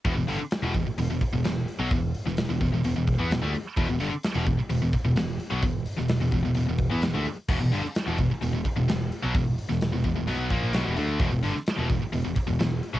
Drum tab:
CC |----------------|----------------|----------------|----------------|
HH |o-o-o-o-o-o-o-o-|o-o-o-o-o-o-o-o-|o-o-o-o-o-o-o-o-|o-o-o-o-o-o-o-o-|
SD |----o-------o---|---oo-------o---|----o-------o---|---oo-------o---|
BD |o-----o---o-----|o-----o---o-----|o-----o---o-----|o-----o---o-----|

CC |x---------------|----------------|----------------|
HH |--o-o-o-o-o-o-o-|o-o-o-o-o-o-o-o-|o-o-o-o-o-o-o-o-|
SD |---oo-------o---|---oo-------o---|---oo-------o---|
BD |o-----o---o-----|o-----o---o-----|o-----o---o-----|